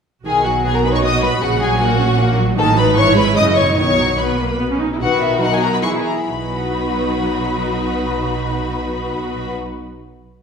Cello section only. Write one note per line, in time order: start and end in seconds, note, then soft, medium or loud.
0.26 1.39 B2 soft
1.43 2.59 A#2 medium
2.59 2.98 A2 medium
2.97 3.36 G#2 medium
3.37 3.77 F#2 medium
3.77 4.79 B2 soft
5.02 6.00 B2 soft
6.27 9.51 B2 soft